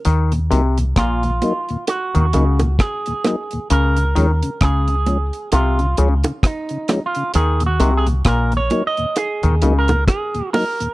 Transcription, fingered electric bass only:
X:1
M:4/4
L:1/16
Q:"Swing 16ths" 1/4=66
K:Ebdor
V:1 name="Fingered electric bass" clef=bass
E,,2 C,,2 B,,,2 z3 E,, D,,2 z4 | D,,2 E,, z D,,3 z C,,2 D,, z4 z | E,,2 C,,2 B,,,2 z3 E,, D,,2 z4 |]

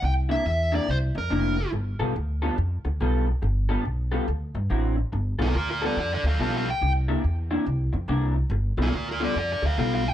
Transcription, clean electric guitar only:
X:1
M:4/4
L:1/8
Q:"Swing" 1/4=142
K:Gmix
V:1 name="Clean electric guitar"
z [C,_B,DE] z [C,B,DE] z2 [C,B,DE] z | z [G,B,FA] z [G,B,FA] z2 [G,B,FA] z | z [G,B,FA] z [G,B,FA] z2 [D,^F,CE] z | z [G,B,FA] z [G,B,FA] z2 [G,B,FA] z |
z [C,_B,DE] z [C,B,DE] z2 [C,B,DE] z | z [G,B,FA] z [G,B,FA] z2 [G,B,FA] z |]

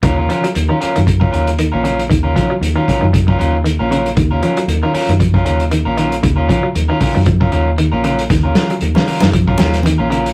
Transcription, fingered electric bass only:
X:1
M:4/4
L:1/16
Q:"Swing 16ths" 1/4=116
K:Ebm
V:1 name="Fingered electric bass" clef=bass
E,,2 z2 E,, z2 G,,3 E,,3 B,,,3 | E,,2 z2 E,, z2 G,,3 E,,3 B,,,3 | E,,2 z2 E,, z2 G,,3 E,,3 B,,,3 | E,,2 z2 E,, z2 G,,3 E,,3 B,,,3 |
E,,2 z2 E,, z2 G,,3 E,,3 B,,,3 |]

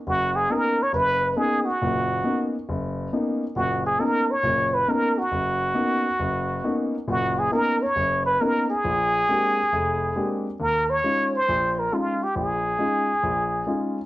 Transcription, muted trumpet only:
X:1
M:4/4
L:1/8
Q:"Swing" 1/4=136
K:B
V:1 name="Muted trumpet"
F G A c B2 G F- | F3 z4 z | F G A c2 B A F- | F6- F z |
F G A c2 B A G- | G6- G z | [K:Cphr] B d2 c2 B F G | A6- A z |]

